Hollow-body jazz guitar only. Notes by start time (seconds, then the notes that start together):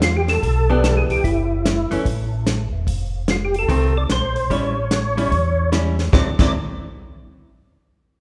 0.70 E3 B3 D4 G4
1.91 E3 A3 C#4
3.69 D#3 A3 C4
4.50 G3 C#4 E4
5.17 G3 C#4 E4
5.72 G3 C#4 E4
6.12 D3 F#3 C4 E4
6.39 D3 F#3 C4 E4